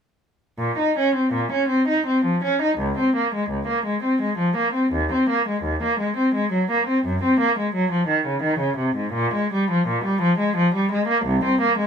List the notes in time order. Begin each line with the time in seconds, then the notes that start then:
0.58 A#2
0.79 D#4
0.99 C#4
1.16 C4
1.33 A#2
1.52 C#4
1.69 C4
1.88 D#4
2.07 C4
2.25 F3
2.44 C#4
2.62 D#4
2.78 C#2
2.98 C4
3.16 A#3
3.35 G#3
3.50 C#2
3.67 A#3
3.86 G#3
4.03 C4
4.22 G#3
4.38 F3
4.57 A#3
4.73 C4
4.93 D#2
5.12 C4
5.30 A#3
5.48 G#3
5.64 D#2
5.83 A#3
6.00 G#3
6.17 C4
6.35 G#3
6.52 F#3
6.71 A#3
6.87 C4
7.05 F#2
7.23 C4
7.40 A#3
7.59 G#3
7.75 F#3
7.92 F3
8.08 D#3
8.27 C#3
8.43 D#3
8.59 C#3
8.77 C3
8.96 G#2
9.13 A#2
9.34 G#3
9.53 G3
9.71 F3
9.88 A#2
10.05 G3
10.22 F3
10.39 G#3
10.57 F3
10.75 G3
10.92 G#3
11.08 A#3
11.26 C2
11.44 C4
11.61 A#3
11.79 G#3